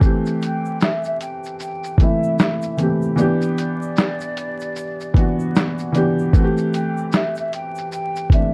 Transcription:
0.00 upright piano E3 A3 C4, kick, shaker
0.05 upright piano G4
0.25 shaker
0.42 flute G5, closed hi-hat, shaker
0.65 shaker
0.81 flute E5, snare, shaker
1.04 flute E5, shaker
1.21 flute G5, closed hi-hat, shaker
1.44 shaker
1.45 shaker
1.60 flute G5, shaker
1.84 shaker
1.98 upright piano E3 A3 C4, flute E5, kick, closed hi-hat, shaker
2.03 upright piano E4
2.23 shaker
2.39 flute E5, snare, shaker
2.62 shaker
2.77 upright piano E3 A3 C4, closed hi-hat, shaker
2.82 upright piano G4
3.02 shaker
3.16 upright piano E3 B3 D4, shaker
3.21 upright piano G4
3.41 shaker
3.58 flute D5, closed hi-hat, shaker
3.82 shaker
3.96 snare, shaker
4.20 shaker
4.37 closed hi-hat, shaker
4.60 shaker
4.61 shaker
4.76 shaker
5.00 shaker
5.14 upright piano E3 B3 D4, kick, closed hi-hat, shaker
5.19 upright piano F#4
5.39 shaker
5.55 snare, shaker
5.78 shaker
5.92 upright piano E3 B3 D4, closed hi-hat, shaker
5.97 upright piano G4
6.19 shaker
6.33 upright piano E3 A3 C4, kick, shaker
6.38 upright piano F#4
6.44 upright piano G4
6.57 shaker
6.73 flute G5, closed hi-hat, shaker
6.97 shaker
7.12 flute E5, snare, shaker
7.35 shaker
7.37 flute E5, shaker
7.53 flute G5, closed hi-hat, shaker
7.75 shaker
7.78 shaker
7.92 flute G5, shaker
8.16 shaker
8.30 upright piano E3 A3 C4, flute E5, kick, closed hi-hat, shaker
8.35 upright piano D4

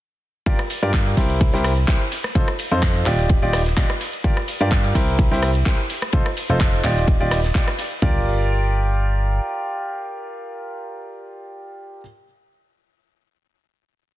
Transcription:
0.46 fm bass G1, grand piano F4 G4 A#4 D5, kick, closed hi-hat, ride
0.59 cross-stick, closed hi-hat
0.70 open hi-hat, ride
0.83 fm bass G2, grand piano F4 G4 A#4 D5, ride
0.94 kick, snare, clap, closed hi-hat, ride
1.06 closed hi-hat
1.17 fm bass C2, grand piano E4 G4 A#4 C5, kick, open hi-hat, ride
1.30 closed hi-hat
1.41 kick, closed hi-hat, ride
1.53 fm bass C2, grand piano E4 G4 A#4 C5, snare, closed hi-hat
1.64 cross-stick, open hi-hat, ride
1.77 closed hi-hat
1.88 fm bass C2, grand piano E4 G4 A#4 C5, kick, snare, clap, closed hi-hat, ride
2.01 closed hi-hat
2.11 snare, open hi-hat, ride
2.24 cross-stick
2.35 fm bass F1, grand piano D#4 F4 A4 C5, kick, closed hi-hat, ride
2.48 cross-stick, closed hi-hat
2.59 open hi-hat, ride
2.71 fm bass F2, grand piano D#4 F4 A4 C5, closed hi-hat
2.82 kick, snare, clap, closed hi-hat, ride
2.95 closed hi-hat
3.06 fm bass D#1, grand piano D#4 F4 G4 D5, clap, open hi-hat, ride
3.19 snare, closed hi-hat
3.29 kick, closed hi-hat, ride
3.42 fm bass D#1, grand piano D#4 F4 G4 D5, closed hi-hat
3.53 cross-stick, snare, open hi-hat, ride
3.66 snare, closed hi-hat
3.77 fm bass D#1, grand piano D#4 F4 G4 D5, kick, snare, clap, closed hi-hat, ride
3.89 cross-stick, closed hi-hat, ride
4.01 snare, open hi-hat, ride
4.13 closed hi-hat
4.24 fm bass G1, grand piano F4 G4 A#4 D5, kick, closed hi-hat, ride
4.37 cross-stick, closed hi-hat
4.48 open hi-hat, ride
4.61 fm bass G2, grand piano F4 G4 A#4 D5, closed hi-hat, ride
4.72 kick, snare, clap, closed hi-hat, ride
4.84 closed hi-hat
4.95 fm bass C2, grand piano E4 G4 A#4 C5, kick, open hi-hat, ride
5.08 closed hi-hat
5.19 kick, closed hi-hat, ride
5.31 fm bass C2, grand piano E4 G4 A#4 C5, snare, closed hi-hat
5.42 cross-stick, open hi-hat, ride
5.55 closed hi-hat
5.66 fm bass C2, grand piano E4 G4 A#4 C5, kick, snare, clap, closed hi-hat, ride
5.79 closed hi-hat
5.90 snare, open hi-hat, ride
6.02 cross-stick, closed hi-hat
6.12 fm bass F1, grand piano D#4 F4 A4 C5, kick, closed hi-hat, ride
6.26 cross-stick, closed hi-hat
6.37 open hi-hat, ride
6.50 fm bass F1, grand piano D#4 F4 A4 C5, closed hi-hat
6.60 kick, snare, clap, closed hi-hat, ride
6.73 closed hi-hat
6.84 fm bass D#1, grand piano D#4 F4 G4 D5, clap, open hi-hat, ride
6.97 snare, closed hi-hat
7.07 kick, closed hi-hat, ride
7.20 fm bass D#1, grand piano D#4 F4 G4 D5, closed hi-hat
7.31 cross-stick, snare, open hi-hat, ride
7.44 snare, closed hi-hat
7.55 fm bass D#1, grand piano D#4 F4 G4 D5, kick, snare, clap, closed hi-hat, ride
7.68 cross-stick, closed hi-hat, ride
7.79 snare, open hi-hat, ride
7.91 closed hi-hat
8.02 fm bass G1, grand piano F4 G4 A#4 D5, kick, floor tom

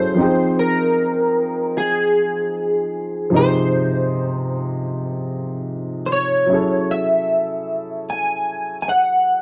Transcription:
Already playing: upright piano F#3 C#4 E4 G#4 A4, clean electric guitar C5
0.14 upright piano F3 C4
0.18 upright piano D#4 G#4 G5
0.59 clean electric guitar A#4
1.78 clean electric guitar G#4
3.30 upright piano C3 F3 D#4
3.36 upright piano G4 G#4, clean electric guitar C5
5.12 clean electric guitar A#4
6.06 clean electric guitar C5
6.12 clean electric guitar C#5
6.46 upright piano F#3 C#4 E4
6.52 upright piano G#4 A4
6.91 clean electric guitar E5
8.10 clean electric guitar G#5
8.82 clean electric guitar G#5
8.89 clean electric guitar F#5

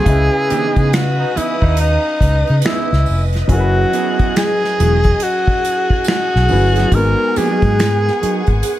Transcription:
Already playing: tenor saxophone G#4
0.05 fingered electric bass C#2, horn section B2 G#3 E4, grand piano C#3 C#4 D#5, string machine B4 D#5 D#6, kick, closed hi-hat
0.09 grand piano G#4 B4
0.50 clean electric guitar D#3 A#3 D4 G4, muted fingered electric bass stroke, closed hi-hat
0.66 clean electric guitar E3 B3 D#4 G#4
0.76 fingered electric bass C#3, kick, closed hi-hat
0.93 tenor saxophone F#4, finger snap, snare, closed hi-hat
1.18 horn section B2 G#3 D#4
1.35 clean electric guitar E3 B3 D#4 G#4, tenor saxophone E4, muted fingered electric bass stroke, closed hi-hat
1.61 fingered electric bass D#2, horn section B2 G#3 D#4, kick
1.77 tenor saxophone D#4, closed hi-hat
2.20 fingered electric bass C#2, kick, closed hi-hat
2.47 fingered electric bass C#3, closed hi-hat
2.62 clean electric guitar E3 B3 D#4, snare, closed hi-hat
2.66 tenor saxophone E4, clean electric guitar G#4, finger snap
2.92 fingered electric bass C#2, snare
3.06 fingered electric bass F1, open hi-hat
3.33 snare, closed hi-hat
3.47 fingered electric bass F#1, grand piano F#3 C#4 E4, string machine G#4 G#5, kick, closed hi-hat
3.52 tenor saxophone F#4, grand piano G#4 A#4
3.60 grand piano B4
3.93 clean electric guitar F#3 B3 E4 G#4, closed hi-hat
4.19 kick, closed hi-hat
4.36 tenor saxophone G#4, finger snap, snare, closed hi-hat
4.64 snare
4.79 fingered electric bass E1, clean electric guitar F#3 B3 E4 G#4, closed hi-hat
5.03 kick, closed hi-hat
5.20 tenor saxophone F#4, closed hi-hat
5.47 kick
5.65 closed hi-hat
5.90 kick
6.04 snare, closed hi-hat
6.08 tenor saxophone F#4, finger snap
6.35 fingered electric bass B1, snare
6.48 fingered electric bass G1, grand piano F#3 C#4 E4 G#4 B4, open hi-hat
6.76 clean electric guitar F#3 B3 E4 G#4, snare, closed hi-hat
6.91 fingered electric bass G#1, grand piano G#3 D#4 F#4, tenor saxophone A#4, string machine F#5, kick, closed hi-hat
6.95 grand piano B3 A#4
7.36 clean electric guitar F3 A#3 D4 G4, tenor saxophone G#4, muted fingered electric bass stroke, closed hi-hat
7.52 clean electric guitar F#3 B3 D#4 G#4
7.62 fingered electric bass G#2, kick, closed hi-hat
7.79 finger snap, snare, closed hi-hat
8.07 snare
8.21 clean electric guitar F#3 B3 D#4 G#4, muted fingered electric bass stroke, closed hi-hat
8.46 fingered electric bass G#1, kick, closed hi-hat
8.63 muted clean electric guitar stroke, closed hi-hat

